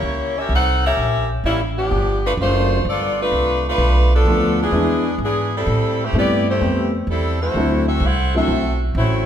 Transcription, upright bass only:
0.02 0.48 C#2 medium
0.49 0.95 C2 medium
0.97 1.43 A#1 medium
1.44 1.90 A1 medium
1.91 2.37 G1 medium
2.37 2.83 F#1 medium
2.85 3.31 G1 medium
3.31 3.77 C2 medium
3.78 4.24 B1 medium
4.25 4.71 D2 medium
4.71 5.18 E2 medium
5.18 5.65 G#2 medium
5.66 6.12 A2 medium
6.13 6.59 G2 medium
6.61 7.06 F2 medium
7.07 7.53 E2 medium
7.54 7.99 D2 medium
8.00 8.47 C2 medium
8.48 8.94 B1 medium
8.95 9.26 A1 medium

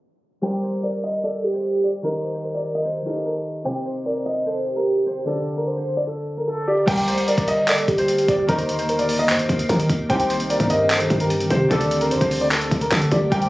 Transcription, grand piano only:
0.43 0.62 G5 loud
0.63 0.82 C5 medium
0.83 1.02 D5 medium
1.04 1.22 D#5 medium
1.24 1.52 D5 medium
1.54 1.82 C5 medium
1.84 2.02 D5 medium
2.04 2.33 A#4 loud
2.34 2.53 C5 medium
2.54 2.73 D5 medium
2.75 2.84 D#5 medium
2.85 3.23 C5 medium
3.25 3.43 A#4 medium
3.65 3.84 G5 loud
3.85 4.04 C5 medium
4.06 4.24 D5 medium
4.26 4.44 D#5 medium
4.46 4.74 C5 medium
4.76 5.04 A#4 medium
5.06 5.25 C5 medium
5.27 5.55 A4 loud
5.57 5.75 A#4 medium
5.77 5.95 C5 medium
5.97 6.06 D5 medium
6.07 6.35 A4 medium
6.37 6.46 A#4 medium
6.47 6.66 A4 medium
6.67 6.86 G4 medium
6.88 7.06 G5 loud
7.08 7.26 C5 medium
7.28 7.46 D5 medium
7.48 7.66 D#5 medium
7.68 7.97 D5 medium
7.98 8.27 C5 medium
8.29 8.47 D5 medium
8.49 8.77 A#4 loud
8.79 8.97 C5 medium
8.99 9.17 D5 medium
9.19 9.28 D#5 medium
9.29 9.67 C5 medium
9.69 9.88 A#4 medium
10.10 10.28 G5 loud
10.30 10.48 C5 medium
10.50 10.68 D5 medium
10.70 10.88 D#5 medium
10.90 11.19 C5 medium
11.20 11.49 A#4 medium
11.51 11.69 C5 medium
11.71 11.99 A4 loud
12.01 12.19 A#4 medium
12.21 12.40 C5 medium
12.41 12.50 D5 medium
12.51 12.80 A4 medium
12.81 12.91 A#4 medium
12.91 13.10 A4 medium
13.12 13.30 G4 medium
13.32 13.49 G5 loud

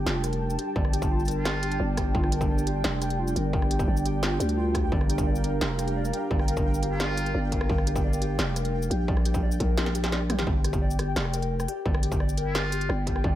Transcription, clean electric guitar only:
0.06 0.16 F4 medium
0.24 0.57 A#4 medium
0.58 0.75 G4 medium
0.76 0.92 D5 medium
0.93 1.09 G4 medium
1.10 1.20 F4 medium
1.28 1.61 A#4 medium
1.63 1.79 G4 medium
1.80 1.96 D5 medium
1.97 2.13 G4 medium
2.15 2.25 F4 medium
2.32 2.65 A#4 medium
2.67 2.83 G4 medium
2.84 3.01 D5 medium
3.01 3.17 G4 medium
3.19 3.29 F4 medium
3.36 3.69 A#4 medium
3.71 3.87 G4 medium
3.88 4.05 D5 medium
4.06 4.21 G4 medium
4.23 4.33 F4 medium
4.40 4.56 G4 medium
4.57 4.73 F4 loud
4.75 4.91 G4 medium
4.92 5.08 D5 medium
5.09 5.25 G4 medium
5.27 5.43 D5 medium
5.44 5.77 A#4 medium
5.79 5.95 G4 medium
5.96 6.13 D5 medium
6.14 6.29 G4 medium
6.31 6.47 D5 medium
6.48 6.81 A#4 medium
6.83 6.99 G4 medium
7.00 7.17 D5 medium
7.17 7.33 G4 medium
7.35 7.51 D5 medium
7.52 7.85 A#4 medium
7.87 8.03 G4 medium
8.04 8.21 D5 medium
8.21 8.37 G4 medium
8.39 8.55 D5 medium
8.56 8.89 A#4 medium
8.91 9.07 G4 medium
9.08 9.25 D5 medium
9.25 9.41 G4 medium
9.43 9.59 D5 medium
9.60 9.93 A#4 medium
9.95 10.11 G4 medium
10.12 10.29 D5 medium
10.29 10.45 G4 medium
10.64 10.81 G4 medium
10.82 10.98 D5 medium
10.99 11.15 G4 medium
11.17 11.33 D5 medium
11.34 11.67 A#4 medium
11.68 11.85 G4 medium
11.86 12.02 D5 medium
12.03 12.19 G4 medium
12.20 12.37 D5 medium
12.38 12.71 A#4 medium
12.72 12.89 G4 medium
12.90 13.06 D5 medium
13.07 13.23 G4 medium
13.24 13.35 D5 medium

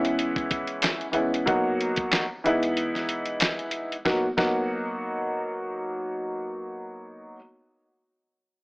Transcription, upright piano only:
0.00 1.05 E3 medium
0.00 1.05 G#3 medium
0.00 1.05 B3 medium
0.00 1.06 C#4 medium
0.00 1.06 E4 loud
1.12 1.43 E3 medium
1.12 1.44 G#3 medium
1.12 1.44 B3 medium
1.12 1.45 C#4 medium
1.12 1.45 E4 medium
1.46 2.22 F#3 medium
1.46 2.22 A#3 medium
1.46 2.23 B3 medium
1.46 2.23 D#4 medium
1.46 2.23 F#4 medium
2.44 3.94 E3 medium
2.44 3.94 G#3 medium
2.44 3.95 B3 medium
2.44 3.95 D#4 medium
2.44 3.95 E4 loud
4.05 4.25 F#3 medium
4.05 4.25 A#3 medium
4.05 4.25 B3 medium
4.05 4.25 D#4 medium
4.05 4.25 F#4 medium
4.37 7.36 F#3 medium
4.37 7.36 A#3 medium
4.37 7.36 B3 medium
4.37 7.36 D#4 medium
4.37 7.37 F#4 medium

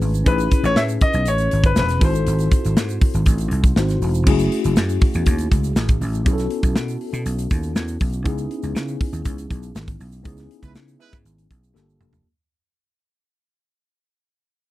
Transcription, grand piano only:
0.28 0.66 B4 medium
0.65 0.78 C#5 loud
0.77 0.82 E5 loud
1.02 1.28 D#5 loud
1.28 1.66 C#5 medium
1.66 1.77 B4 medium
1.79 2.01 B4 medium
2.04 3.99 C5 medium

